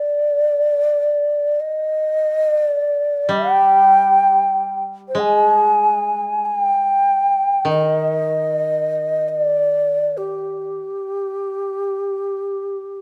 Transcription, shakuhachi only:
0, 0, Header, 1, 2, 480
1, 0, Start_track
1, 0, Tempo, 500000
1, 12495, End_track
2, 0, Start_track
2, 0, Title_t, "Shakuhachi"
2, 0, Program_c, 0, 77
2, 0, Note_on_c, 0, 74, 67
2, 1537, Note_on_c, 0, 75, 73
2, 1552, Note_off_c, 0, 74, 0
2, 2497, Note_off_c, 0, 75, 0
2, 2497, Note_on_c, 0, 74, 73
2, 3185, Note_on_c, 0, 79, 79
2, 3200, Note_off_c, 0, 74, 0
2, 4634, Note_off_c, 0, 79, 0
2, 4880, Note_on_c, 0, 72, 47
2, 4981, Note_on_c, 0, 80, 69
2, 4995, Note_off_c, 0, 72, 0
2, 6194, Note_off_c, 0, 80, 0
2, 6194, Note_on_c, 0, 80, 61
2, 6319, Note_off_c, 0, 80, 0
2, 6319, Note_on_c, 0, 79, 61
2, 7375, Note_off_c, 0, 79, 0
2, 7391, Note_on_c, 0, 75, 69
2, 8914, Note_off_c, 0, 75, 0
2, 8914, Note_on_c, 0, 75, 73
2, 9030, Note_off_c, 0, 75, 0
2, 9030, Note_on_c, 0, 74, 73
2, 9766, Note_on_c, 0, 67, 56
2, 9781, Note_off_c, 0, 74, 0
2, 12495, Note_off_c, 0, 67, 0
2, 12495, End_track
0, 0, End_of_file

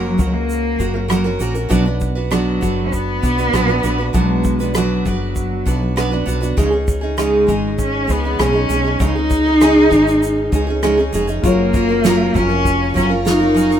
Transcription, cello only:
0, 0, Header, 1, 2, 480
1, 0, Start_track
1, 0, Key_signature, 6, "major"
1, 0, Tempo, 607287
1, 1353, Time_signature, 4, 2, 24, 8
1, 10905, End_track
2, 0, Start_track
2, 0, Title_t, "Cello"
2, 0, Program_c, 0, 42
2, 0, Note_on_c, 0, 54, 83
2, 263, Note_on_c, 0, 58, 88
2, 275, Note_off_c, 0, 54, 0
2, 988, Note_off_c, 0, 58, 0
2, 1836, Note_on_c, 0, 54, 88
2, 2270, Note_on_c, 0, 61, 76
2, 2281, Note_off_c, 0, 54, 0
2, 2312, Note_on_c, 0, 59, 102
2, 2324, Note_off_c, 0, 61, 0
2, 3264, Note_off_c, 0, 59, 0
2, 3269, Note_on_c, 0, 56, 94
2, 3743, Note_on_c, 0, 54, 84
2, 3755, Note_off_c, 0, 56, 0
2, 4098, Note_off_c, 0, 54, 0
2, 4103, Note_on_c, 0, 54, 77
2, 4799, Note_off_c, 0, 54, 0
2, 5694, Note_on_c, 0, 56, 88
2, 6135, Note_off_c, 0, 56, 0
2, 6166, Note_on_c, 0, 61, 91
2, 6411, Note_on_c, 0, 59, 91
2, 6423, Note_off_c, 0, 61, 0
2, 6649, Note_on_c, 0, 61, 95
2, 6661, Note_off_c, 0, 59, 0
2, 7132, Note_on_c, 0, 63, 115
2, 7144, Note_off_c, 0, 61, 0
2, 8565, Note_off_c, 0, 63, 0
2, 9043, Note_on_c, 0, 58, 98
2, 9768, Note_on_c, 0, 61, 106
2, 9780, Note_off_c, 0, 58, 0
2, 10241, Note_off_c, 0, 61, 0
2, 10245, Note_on_c, 0, 61, 94
2, 10351, Note_off_c, 0, 61, 0
2, 10495, Note_on_c, 0, 63, 102
2, 10905, Note_off_c, 0, 63, 0
2, 10905, End_track
0, 0, End_of_file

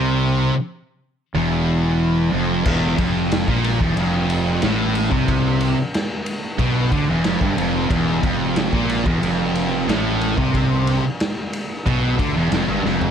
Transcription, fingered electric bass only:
0, 0, Header, 1, 2, 480
1, 0, Start_track
1, 0, Tempo, 656455
1, 34, Time_signature, 4, 2, 24, 8
1, 9585, End_track
2, 0, Start_track
2, 0, Title_t, "Fingered electric bass"
2, 0, Program_c, 0, 33
2, 0, Note_on_c, 0, 36, 102
2, 364, Note_off_c, 0, 36, 0
2, 987, Note_on_c, 0, 28, 97
2, 1676, Note_off_c, 0, 28, 0
2, 1704, Note_on_c, 0, 29, 89
2, 1927, Note_off_c, 0, 29, 0
2, 1945, Note_on_c, 0, 28, 98
2, 2168, Note_off_c, 0, 28, 0
2, 2184, Note_on_c, 0, 29, 88
2, 2518, Note_off_c, 0, 29, 0
2, 2544, Note_on_c, 0, 34, 86
2, 2766, Note_off_c, 0, 34, 0
2, 2784, Note_on_c, 0, 28, 92
2, 2894, Note_off_c, 0, 28, 0
2, 2904, Note_on_c, 0, 29, 91
2, 3353, Note_off_c, 0, 29, 0
2, 3389, Note_on_c, 0, 33, 106
2, 3719, Note_off_c, 0, 33, 0
2, 3743, Note_on_c, 0, 36, 99
2, 4192, Note_off_c, 0, 36, 0
2, 4819, Note_on_c, 0, 35, 103
2, 5042, Note_off_c, 0, 35, 0
2, 5057, Note_on_c, 0, 38, 89
2, 5170, Note_off_c, 0, 38, 0
2, 5190, Note_on_c, 0, 28, 105
2, 5297, Note_off_c, 0, 28, 0
2, 5305, Note_on_c, 0, 29, 98
2, 5415, Note_off_c, 0, 29, 0
2, 5422, Note_on_c, 0, 31, 96
2, 5533, Note_off_c, 0, 31, 0
2, 5545, Note_on_c, 0, 29, 91
2, 5766, Note_off_c, 0, 29, 0
2, 5780, Note_on_c, 0, 28, 109
2, 6004, Note_off_c, 0, 28, 0
2, 6020, Note_on_c, 0, 29, 88
2, 6356, Note_off_c, 0, 29, 0
2, 6382, Note_on_c, 0, 34, 97
2, 6605, Note_off_c, 0, 34, 0
2, 6626, Note_on_c, 0, 28, 93
2, 6736, Note_off_c, 0, 28, 0
2, 6741, Note_on_c, 0, 29, 91
2, 7193, Note_off_c, 0, 29, 0
2, 7227, Note_on_c, 0, 33, 100
2, 7561, Note_off_c, 0, 33, 0
2, 7589, Note_on_c, 0, 36, 106
2, 8039, Note_off_c, 0, 36, 0
2, 8677, Note_on_c, 0, 35, 89
2, 8897, Note_off_c, 0, 35, 0
2, 8912, Note_on_c, 0, 38, 87
2, 9023, Note_off_c, 0, 38, 0
2, 9037, Note_on_c, 0, 28, 111
2, 9146, Note_off_c, 0, 28, 0
2, 9157, Note_on_c, 0, 29, 99
2, 9266, Note_off_c, 0, 29, 0
2, 9275, Note_on_c, 0, 31, 96
2, 9386, Note_off_c, 0, 31, 0
2, 9394, Note_on_c, 0, 29, 91
2, 9585, Note_off_c, 0, 29, 0
2, 9585, End_track
0, 0, End_of_file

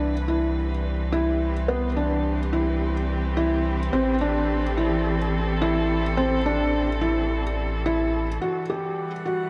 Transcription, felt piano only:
0, 0, Header, 1, 2, 480
1, 0, Start_track
1, 0, Tempo, 560748
1, 1447, Time_signature, 4, 2, 24, 8
1, 8129, End_track
2, 0, Start_track
2, 0, Title_t, "Felt piano"
2, 0, Program_c, 0, 0
2, 0, Note_on_c, 0, 62, 70
2, 112, Note_off_c, 0, 62, 0
2, 240, Note_on_c, 0, 64, 69
2, 589, Note_off_c, 0, 64, 0
2, 962, Note_on_c, 0, 64, 82
2, 1310, Note_off_c, 0, 64, 0
2, 1441, Note_on_c, 0, 59, 79
2, 1616, Note_off_c, 0, 59, 0
2, 1682, Note_on_c, 0, 62, 73
2, 2030, Note_off_c, 0, 62, 0
2, 2163, Note_on_c, 0, 64, 70
2, 2511, Note_off_c, 0, 64, 0
2, 2883, Note_on_c, 0, 64, 85
2, 3231, Note_off_c, 0, 64, 0
2, 3363, Note_on_c, 0, 60, 87
2, 3538, Note_off_c, 0, 60, 0
2, 3604, Note_on_c, 0, 62, 73
2, 3951, Note_off_c, 0, 62, 0
2, 4086, Note_on_c, 0, 64, 68
2, 4433, Note_off_c, 0, 64, 0
2, 4807, Note_on_c, 0, 64, 85
2, 5153, Note_off_c, 0, 64, 0
2, 5285, Note_on_c, 0, 60, 89
2, 5459, Note_off_c, 0, 60, 0
2, 5528, Note_on_c, 0, 62, 74
2, 5874, Note_off_c, 0, 62, 0
2, 6004, Note_on_c, 0, 64, 72
2, 6351, Note_off_c, 0, 64, 0
2, 6726, Note_on_c, 0, 64, 89
2, 7073, Note_off_c, 0, 64, 0
2, 7203, Note_on_c, 0, 66, 70
2, 7378, Note_off_c, 0, 66, 0
2, 7444, Note_on_c, 0, 67, 59
2, 7791, Note_off_c, 0, 67, 0
2, 7922, Note_on_c, 0, 66, 59
2, 8129, Note_off_c, 0, 66, 0
2, 8129, End_track
0, 0, End_of_file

